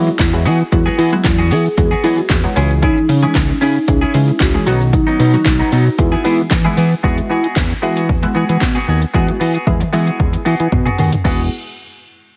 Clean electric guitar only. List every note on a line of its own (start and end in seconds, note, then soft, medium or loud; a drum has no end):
0.07 muted clean electric guitar stroke soft
0.33 muted clean electric guitar stroke soft
0.45 0.61 B3 loud
0.45 0.60 F#4 loud
0.45 0.58 G#4 loud
0.60 muted clean electric guitar stroke soft
0.72 muted clean electric guitar stroke soft
0.86 0.97 B3 medium
0.86 0.98 F#4 medium
0.86 0.99 G#4 medium
0.98 1.10 B3 medium
0.98 1.11 F#4 medium
0.98 1.11 G#4 medium
1.12 muted clean electric guitar stroke soft
1.25 muted clean electric guitar stroke soft
1.38 1.50 B3 medium
1.38 1.50 F#4 medium
1.38 1.49 G#4 medium
1.51 1.66 B3 medium
1.51 1.65 F#4 loud
1.51 1.64 G#4 loud
1.65 muted clean electric guitar stroke medium
1.77 muted clean electric guitar stroke soft
1.91 2.02 B3 medium
1.91 2.02 F#4 medium
1.91 2.02 G#4 medium
2.03 2.19 B3 medium
2.03 2.18 F#4 medium
2.03 2.16 G#4 medium
2.18 muted clean electric guitar stroke medium
2.30 muted clean electric guitar stroke soft
2.44 muted clean electric guitar stroke medium
2.56 2.71 C#4 medium
2.56 2.70 E4 medium
2.56 2.69 G#4 loud
2.70 muted clean electric guitar stroke soft
2.82 2.98 C#4 medium
2.82 2.97 E4 medium
2.82 2.95 G#4 loud
2.96 muted clean electric guitar stroke soft
3.09 muted clean electric guitar stroke soft
3.23 3.34 C#4 medium
3.23 3.34 E4 medium
3.23 3.33 G#4 medium
3.49 muted clean electric guitar stroke medium
3.61 3.77 C#4 medium
3.61 3.75 E4 medium
3.61 3.74 G#4 loud
3.75 muted clean electric guitar stroke soft
3.88 muted clean electric guitar stroke soft
4.01 4.13 C#4 medium
4.01 4.14 E4 medium
4.01 4.14 G#4 medium
4.28 muted clean electric guitar stroke soft
4.54 muted clean electric guitar stroke medium
4.66 4.82 F#3 medium
4.66 4.81 B3 medium
4.66 4.79 D#4 loud
4.80 muted clean electric guitar stroke medium
4.93 muted clean electric guitar stroke soft
5.07 5.18 F#3 medium
5.07 5.19 B3 medium
5.07 5.20 D#4 medium
5.19 5.31 F#3 medium
5.19 5.32 B3 medium
5.19 5.32 D#4 medium
5.33 muted clean electric guitar stroke soft
5.46 muted clean electric guitar stroke soft
5.59 5.70 F#3 medium
5.59 5.71 B3 medium
5.59 5.70 D#4 medium
5.72 5.87 F#3 medium
5.72 5.86 B3 medium
5.72 5.85 D#4 loud
5.86 muted clean electric guitar stroke medium
5.98 muted clean electric guitar stroke soft
6.12 6.23 B3 medium
6.12 6.23 E4 medium
6.12 6.23 G#4 medium
6.24 6.40 B3 medium
6.24 6.39 E4 medium
6.24 6.37 G#4 loud
6.38 muted clean electric guitar stroke medium
6.51 muted clean electric guitar stroke medium
6.64 6.76 B3 medium
6.64 6.76 E4 medium
6.64 6.76 G#4 medium
6.77 6.92 B3 medium
6.77 6.91 E4 medium
6.77 6.90 G#4 loud
6.91 muted clean electric guitar stroke medium
7.03 7.19 B3 medium
7.03 7.17 F#4 medium
7.03 7.16 G#4 loud
7.17 muted clean electric guitar stroke soft
7.29 7.42 B3 medium
7.29 7.42 F#4 medium
7.29 7.42 G#4 medium
7.43 7.55 B3 soft
7.43 7.55 F#4 medium
7.43 7.54 G#4 medium
7.56 muted clean electric guitar stroke soft
7.70 muted clean electric guitar stroke soft
7.82 7.97 B3 medium
7.82 7.96 F#4 medium
7.82 7.95 G#4 medium
7.96 8.07 B3 medium
7.96 8.08 F#4 medium
7.96 8.07 G#4 medium
8.09 muted clean electric guitar stroke soft
8.23 muted clean electric guitar stroke soft
8.35 8.49 B3 medium
8.35 8.49 F#4 medium
8.35 8.47 G#4 loud
8.49 8.60 B3 medium
8.49 8.60 F#4 medium
8.49 8.60 G#4 medium
8.61 muted clean electric guitar stroke soft
8.75 8.86 B3 medium
8.75 8.87 F#4 medium
8.75 8.86 G#4 medium
8.87 9.03 B3 medium
8.87 9.02 F#4 medium
8.87 9.00 G#4 medium
9.02 muted clean electric guitar stroke soft
9.14 9.29 B3 loud
9.14 9.28 F#4 medium
9.14 9.27 G#4 loud
9.28 muted clean electric guitar stroke medium
9.40 9.52 B3 medium
9.40 9.53 F#4 medium
9.40 9.53 G#4 medium
9.54 9.65 B3 medium
9.54 9.65 F#4 medium
9.54 9.65 G#4 medium
9.66 muted clean electric guitar stroke soft
9.80 muted clean electric guitar stroke medium
9.93 10.07 B3 medium
9.93 10.06 F#4 medium
9.93 10.05 G#4 medium
10.06 10.18 B3 medium
10.06 10.18 F#4 medium
10.06 10.18 G#4 medium
10.19 muted clean electric guitar stroke soft
10.33 muted clean electric guitar stroke soft
10.45 10.60 B3 medium
10.45 10.59 F#4 loud
10.45 10.58 G#4 loud
10.59 10.71 B3 medium
10.59 10.71 F#4 medium
10.59 10.70 G#4 medium
10.72 muted clean electric guitar stroke soft
10.86 10.97 B3 medium
10.86 10.98 F#4 medium
10.86 10.99 G#4 medium
10.98 11.10 B3 medium
10.98 11.11 F#4 medium
10.98 11.11 G#4 medium
11.12 muted clean electric guitar stroke soft
11.24 11.41 B3 medium
11.24 11.41 F#4 medium
11.24 11.42 G#4 loud